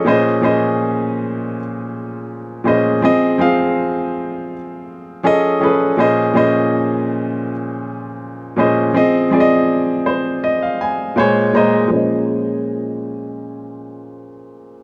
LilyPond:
\new Staff \with { instrumentName = "Grand piano" } { \time 4/4 \key bes \minor \tempo 4 = 81 << { r1 | r1 | r1 | r4. c''8 ees''16 f''16 aes''8 aes''8 bes''8 |
r1 | } \\ { <bes, f des' aes' c'' ees''>8 <bes, f des' aes' c'' ees''>4. r4. <bes, f des' aes' c'' ees''>8 | <f c' aes' ees''>8 <f c' aes' f''>4. r4 <f cis' gis' a' ees''>8 <f cis' gis' a' ces''>8 | <bes, f des' aes' c'' ees''>8 <bes, f des' aes' c'' ees''>4. r4. <bes, f des' aes' c'' ees''>8 | <f c' aes' ees''>8 <f c' aes' d'' ees''>4. r4 <bes, aes c'' des''>8 <bes, aes c'' ees''>8 |
<bes, f aes des' c'' ees''>1 | } >> }